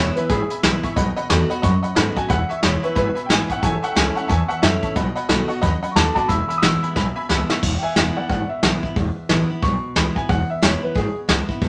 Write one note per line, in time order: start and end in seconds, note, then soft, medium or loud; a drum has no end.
0.00 0.28 E2 medium
0.00 0.16 E3 medium
0.00 0.16 G#3 medium
0.00 0.16 B3 loud
0.00 0.16 E4 loud
0.00 0.15 C#5 medium
0.16 0.30 B3 medium
0.16 0.29 E4 medium
0.16 0.29 B4 medium
0.16 0.25 E5 medium
0.16 0.25 G#5 medium
0.16 0.25 B5 medium
0.16 muted upright bass stroke medium
0.16 closed hi-hat medium
0.29 0.42 G#1 loud
0.29 0.94 B2 medium
0.29 0.49 G#4 loud
0.29 0.42 E5 medium
0.29 0.42 G#5 medium
0.29 0.42 B5 loud
0.29 kick loud
0.29 closed hi-hat medium
0.50 0.58 E5 medium
0.50 0.58 G#5 medium
0.50 0.58 B5 medium
0.50 muted upright bass stroke medium
0.50 closed hi-hat medium
0.63 0.76 B1 loud
0.63 0.82 E3 medium
0.63 0.83 G#3 medium
0.63 0.83 B3 medium
0.63 0.82 E4 medium
0.63 0.75 E5 loud
0.63 0.76 G#5 medium
0.63 0.76 B5 loud
0.63 snare loud
0.63 closed hi-hat medium
0.83 0.97 B3 soft
0.83 0.96 E4 medium
0.83 0.91 E5 medium
0.83 0.91 G#5 medium
0.83 0.91 C#6 loud
0.83 muted upright bass stroke medium
0.83 kick medium
0.83 closed hi-hat medium
0.96 1.10 B1 loud
0.96 1.61 B2 medium
0.96 1.08 D#5 loud
0.96 1.09 F#5 loud
0.96 1.09 B5 loud
0.96 kick loud
0.96 closed hi-hat medium
1.16 1.24 D#5 medium
1.16 1.24 F#5 medium
1.16 1.25 B5 loud
1.16 closed hi-hat medium
1.30 1.43 E2 medium
1.30 1.49 D#3 medium
1.30 1.50 A3 loud
1.30 1.50 B3 medium
1.30 1.49 F#4 loud
1.30 1.42 D#5 medium
1.30 1.42 F#5 medium
1.30 1.42 B5 medium
1.30 snare loud
1.30 closed hi-hat medium
1.50 1.64 B3 soft
1.50 1.62 F#4 medium
1.50 1.58 D#5 loud
1.50 1.58 F#5 medium
1.50 1.58 B5 loud
1.50 muted upright bass stroke medium
1.50 closed hi-hat medium
1.62 1.76 F#2 medium
1.62 2.27 F#2 medium
1.62 1.75 D#5 medium
1.62 1.75 F#5 medium
1.62 1.75 B5 loud
1.62 1.95 C#6 medium
1.62 kick loud
1.62 closed hi-hat medium
1.83 1.91 D#5 medium
1.83 1.91 F#5 medium
1.83 1.91 B5 medium
1.83 muted upright bass stroke medium
1.83 closed hi-hat medium
1.95 2.10 G#2 medium
1.95 2.15 D#3 medium
1.95 2.16 A3 medium
1.95 2.16 B3 loud
1.95 2.16 F#4 loud
1.95 2.08 D#5 medium
1.95 2.08 F#5 medium
1.95 2.08 G#5 medium
1.95 2.16 B5 medium
1.95 snare loud
1.95 closed hi-hat medium
2.16 2.30 B3 medium
2.16 2.29 F#4 medium
2.16 2.24 D#5 medium
2.16 2.24 F#5 medium
2.16 2.29 G#5 medium
2.16 2.24 A5 medium
2.16 muted upright bass stroke medium
2.16 kick medium
2.16 closed hi-hat medium
2.28 2.43 E1 medium
2.28 2.94 E2 medium
2.28 2.41 E5 medium
2.28 2.49 F#5 loud
2.28 2.41 G#5 medium
2.28 2.41 B5 loud
2.28 kick loud
2.28 closed hi-hat medium
2.49 2.57 E5 medium
2.49 2.63 E5 medium
2.49 2.58 G#5 medium
2.49 2.58 C#6 medium
2.49 closed hi-hat medium
2.62 2.76 E1 medium
2.62 2.83 E3 medium
2.62 2.83 G#3 medium
2.62 2.83 B3 medium
2.62 2.82 E4 loud
2.62 2.83 C#5 medium
2.62 2.75 E5 medium
2.62 2.75 G#5 medium
2.62 2.75 B5 medium
2.62 snare loud
2.62 closed hi-hat medium
2.83 2.97 B3 medium
2.83 2.96 E4 medium
2.83 2.95 B4 medium
2.83 2.91 E5 medium
2.83 2.91 G#5 medium
2.83 2.91 C#6 medium
2.83 closed hi-hat medium
2.95 3.09 G#1 medium
2.95 3.60 B2 medium
2.95 3.16 B4 loud
2.95 3.08 E5 medium
2.95 3.08 G#5 medium
2.95 3.08 B5 loud
2.95 kick loud
2.95 closed hi-hat medium
3.15 3.24 E5 medium
3.15 3.24 G#5 medium
3.15 3.24 B5 medium
3.15 closed hi-hat medium
3.26 3.42 G#1 medium
3.26 3.49 E3 medium
3.26 3.49 G#3 medium
3.26 3.41 E5 medium
3.26 3.29 G5 medium
3.26 3.41 G#5 medium
3.26 3.42 B5 medium
3.26 snare loud
3.26 closed hi-hat loud
3.31 3.49 B3 medium
3.31 3.48 E4 medium
3.31 3.50 G#5 loud
3.49 3.63 B3 soft
3.49 3.62 E4 medium
3.49 3.57 E5 medium
3.49 3.63 F#5 medium
3.49 3.58 G#5 medium
3.49 3.58 C#6 medium
3.49 kick medium
3.49 closed hi-hat medium
3.60 3.76 A1 loud
3.60 4.27 A2 medium
3.60 3.75 E5 loud
3.60 3.62 G5 medium
3.60 3.75 A5 medium
3.60 3.75 C#6 loud
3.60 kick loud
3.60 closed hi-hat medium
3.64 3.83 G#5 loud
3.83 3.91 E5 medium
3.83 3.96 F#5 medium
3.83 3.91 A5 medium
3.83 3.91 C#6 medium
3.83 closed hi-hat medium
3.92 4.15 E3 medium
3.92 4.08 E5 medium
3.92 3.95 G5 medium
3.92 4.08 A5 medium
3.92 4.08 C#6 medium
3.96 4.09 C#2 loud
3.96 4.16 A3 medium
3.96 4.16 C#4 loud
3.96 4.15 E4 loud
3.96 4.16 G#5 loud
3.96 snare loud
3.96 closed hi-hat medium
4.15 4.30 C#4 soft
4.15 4.29 E4 medium
4.15 4.24 E5 medium
4.15 4.29 F#5 medium
4.15 4.24 A5 medium
4.15 4.24 C#6 medium
4.15 muted upright bass stroke medium
4.15 closed hi-hat medium
4.28 4.42 E2 medium
4.28 4.94 E2 medium
4.28 4.41 E5 loud
4.28 4.50 G#5 medium
4.28 4.41 A5 medium
4.28 4.41 C#6 loud
4.28 kick loud
4.28 closed hi-hat medium
4.48 4.57 E5 medium
4.48 4.62 F#5 medium
4.48 4.57 A5 medium
4.48 4.57 C#6 medium
4.48 muted upright bass stroke medium
4.48 closed hi-hat medium
4.62 4.76 F#2 medium
4.62 4.95 E3 medium
4.62 4.95 A3 medium
4.62 4.95 C#4 medium
4.62 4.96 E4 loud
4.62 4.75 E5 medium
4.62 4.95 E5 loud
4.62 4.75 A5 medium
4.62 4.75 C#6 medium
4.62 snare loud
4.62 closed hi-hat medium
4.83 4.91 E5 medium
4.83 4.91 A5 medium
4.83 4.91 C#6 medium
4.83 kick medium
4.83 closed hi-hat medium
4.96 5.09 B1 loud
4.96 5.61 B2 medium
4.96 5.08 D#5 medium
4.96 5.08 F#5 medium
4.96 5.08 B5 loud
4.96 kick loud
4.96 closed hi-hat medium
5.16 5.24 D#5 medium
5.16 5.24 F#5 medium
5.16 5.24 B5 loud
5.16 closed hi-hat medium
5.29 5.42 B1 loud
5.29 5.49 D#3 medium
5.29 5.49 A3 medium
5.29 5.50 B3 medium
5.29 5.48 F#4 medium
5.29 5.41 D#5 medium
5.29 5.41 F#5 medium
5.29 5.42 B5 medium
5.29 snare loud
5.29 closed hi-hat medium
5.48 5.63 B3 soft
5.48 5.62 F#4 medium
5.48 5.57 D#5 medium
5.48 5.57 F#5 medium
5.48 5.57 C#6 loud
5.48 closed hi-hat medium
5.62 5.76 D#2 loud
5.62 6.27 F#2 medium
5.62 5.74 D#5 loud
5.62 5.74 F#5 loud
5.62 5.75 B5 loud
5.62 kick loud
5.62 closed hi-hat medium
5.82 5.91 D#5 medium
5.82 5.91 F#5 medium
5.82 5.91 B5 loud
5.82 muted upright bass stroke medium
5.82 closed hi-hat medium
5.92 6.08 D#2 medium
5.92 5.94 C#6 medium
5.96 6.16 D#3 medium
5.96 6.16 A3 medium
5.96 6.16 B3 medium
5.96 6.14 F#4 medium
5.96 6.08 D#5 medium
5.96 6.08 F#5 medium
5.96 6.13 A5 medium
5.96 6.08 B5 medium
5.96 6.14 D6 medium
5.96 snare loud
5.96 closed hi-hat medium
6.15 6.29 B3 soft
6.15 6.29 F#4 medium
6.15 6.24 D#5 medium
6.15 6.24 F#5 medium
6.15 6.28 A5 medium
6.15 6.24 B5 medium
6.15 6.29 D6 medium
6.15 muted upright bass stroke medium
6.15 kick medium
6.15 closed hi-hat medium
6.28 6.42 E1 loud
6.28 6.94 E2 medium
6.28 6.41 E5 loud
6.28 6.41 G#5 medium
6.28 6.47 B5 medium
6.28 6.41 B5 loud
6.28 6.47 E6 medium
6.28 kick loud
6.28 closed hi-hat medium
6.48 6.57 E5 medium
6.48 6.58 G#5 medium
6.48 6.61 B5 medium
6.48 6.58 B5 medium
6.48 6.60 E6 medium
6.48 muted upright bass stroke medium
6.48 closed hi-hat medium
6.58 6.61 D#6 medium
6.62 6.75 A1 medium
6.62 6.94 E3 medium
6.62 6.95 G#3 loud
6.62 6.95 B3 medium
6.62 6.95 E4 loud
6.62 6.75 E5 medium
6.62 6.75 G#5 medium
6.62 6.75 B5 medium
6.62 7.59 E6 loud
6.62 snare loud
6.62 closed hi-hat medium
6.82 6.91 E5 medium
6.82 6.91 G#5 medium
6.82 6.91 B5 medium
6.82 muted upright bass stroke medium
6.82 closed hi-hat medium
6.96 7.09 B1 medium
6.96 7.60 B2 medium
6.96 7.08 E5 medium
6.96 7.08 G#5 medium
6.96 7.08 B5 loud
6.96 kick loud
6.96 snare medium
7.16 7.24 E5 medium
7.16 7.24 G#5 medium
7.16 7.24 B5 loud
7.16 muted upright bass stroke medium
7.29 7.42 C#2 medium
7.29 7.49 E3 medium
7.29 7.49 G#3 medium
7.29 7.49 B3 medium
7.29 7.48 E4 loud
7.29 7.41 E5 medium
7.29 7.41 G#5 medium
7.29 7.42 B5 medium
7.29 snare loud
7.49 7.63 B3 medium
7.49 7.62 E4 medium
7.49 7.57 E5 medium
7.49 7.57 G#5 medium
7.49 7.57 C#6 loud
7.49 snare loud
7.63 7.76 E1 loud
7.63 8.27 E2 medium
7.63 kick loud
7.63 crash loud
7.78 7.80 G5 medium
7.83 7.94 E5 medium
7.83 7.94 G#5 medium
7.83 muted upright bass stroke medium
7.95 8.09 E1 medium
7.95 8.15 E3 medium
7.95 8.16 G#3 medium
7.95 8.16 B3 loud
7.95 8.16 E4 loud
7.95 8.14 E5 medium
7.95 8.15 G#5 medium
7.95 snare loud
8.16 8.30 B3 medium
8.16 8.29 E4 medium
8.16 8.27 D5 medium
8.16 8.28 F#5 medium
8.29 8.42 G#1 loud
8.29 8.94 B2 medium
8.29 8.48 D5 medium
8.29 8.49 F#5 medium
8.29 kick loud
8.29 open hi-hat soft
8.49 9.46 E5 medium
8.49 muted upright bass stroke medium
8.63 8.76 B1 medium
8.63 8.82 E3 medium
8.63 8.83 G#3 medium
8.63 8.83 B3 medium
8.63 8.82 E4 medium
8.63 snare loud
8.63 open hi-hat medium
8.83 8.96 B3 soft
8.83 8.95 E4 medium
8.83 muted upright bass stroke medium
8.83 kick medium
8.96 9.09 E1 loud
8.96 9.60 E2 medium
8.96 kick loud
8.96 open hi-hat medium
9.16 muted upright bass stroke medium
9.29 9.42 A1 loud
9.29 9.48 E3 medium
9.29 9.49 G#3 loud
9.29 9.49 B3 loud
9.29 9.48 E4 loud
9.29 snare loud
9.29 open hi-hat medium
9.50 9.63 B3 soft
9.50 9.62 E4 medium
9.50 muted upright bass stroke medium
9.62 9.76 B1 loud
9.62 10.27 B2 medium
9.62 9.95 C#6 loud
9.62 kick loud
9.62 open hi-hat medium
9.83 muted upright bass stroke medium
9.96 10.09 C#2 loud
9.96 10.15 E3 medium
9.96 10.15 G#3 medium
9.96 10.16 B3 medium
9.96 10.14 E4 medium
9.96 10.16 B5 medium
9.96 snare loud
9.96 open hi-hat medium
10.15 10.29 B3 medium
10.15 10.28 E4 medium
10.15 10.29 G#5 medium
10.15 kick medium
10.29 10.42 E1 loud
10.29 10.93 E2 medium
10.29 10.49 F#5 medium
10.29 kick loud
10.29 open hi-hat soft
10.49 10.62 E5 medium
10.49 muted upright bass stroke medium
10.62 10.75 E1 loud
10.62 10.81 E3 medium
10.62 10.82 G#3 medium
10.62 10.82 B3 medium
10.62 10.81 E4 loud
10.62 10.82 C#5 medium
10.62 snare loud
10.82 10.96 B3 medium
10.82 10.95 E4 medium
10.82 10.95 B4 medium
10.82 muted upright bass stroke medium
10.95 11.08 G#1 medium
10.95 11.59 B2 medium
10.95 11.15 G#4 loud
10.95 kick loud
10.95 open hi-hat soft
11.15 muted upright bass stroke medium
11.28 11.41 C#2 medium
11.28 11.48 E3 medium
11.28 11.48 G#3 medium
11.28 11.48 B3 medium
11.28 11.47 E4 loud
11.28 snare loud
11.28 open hi-hat medium
11.48 11.62 B3 soft
11.48 11.61 E4 medium
11.48 muted upright bass stroke medium
11.48 kick medium
11.62 11.69 B1 loud
11.62 11.69 B2 medium
11.62 kick loud
11.62 open hi-hat medium